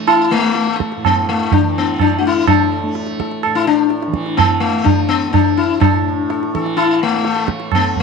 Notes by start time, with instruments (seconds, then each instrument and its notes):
Already playing: tanpura A2 E3 A3
0.07 sitar E4, tabla na
0.31 sitar A3, tanpura A3
0.55 tabla te
0.67 tabla te
0.78 sitar A4, tabla ke
0.92 tabla te
0.96 tanpura A2
1.05 sitar B3, tabla na, tabla ge
1.29 sitar A3
1.52 sitar D4, tabla tin, tabla ge
1.60 tanpura E3
1.78 sitar B3
1.99 sitar D4, tabla na, tabla ge
2.18 tanpura A3, sitar F#4
2.24 sitar E4, tabla te
2.47 sitar D4, tabla na, tabla ge
2.72 sitar A4
2.83 tanpura A3
2.95 tabla te
3.07 tabla te
3.19 sitar A4, tabla ke
3.31 tabla te
3.43 tanpura A2, sitar A4, tabla na
3.55 sitar E4
3.67 sitar D4
3.90 tabla te
4.03 tabla te
4.07 tanpura E3
4.14 tabla ke
4.26 tabla te
4.37 sitar B3, tabla na, tabla ge
4.60 sitar A3
4.69 tanpura A3
4.84 sitar D4, tabla tin, tabla ge
5.09 sitar B3
5.30 tanpura A3, sitar D4, tabla na, tabla ge
5.57 sitar E4
5.80 sitar D4, tabla na, tabla ge
5.93 tanpura A2
6.30 sitar A4, tabla te
6.43 tabla te
6.54 tanpura E3, sitar A4, tabla ke
6.66 tabla te
6.77 sitar E4, tabla na
7.03 sitar A3
7.15 tanpura A3
7.25 sitar A4, tabla te
7.36 tabla te
7.48 tabla ke
7.60 tabla te
7.72 sitar B3, tabla na, tabla ge
7.77 tanpura A3
7.96 tabla ge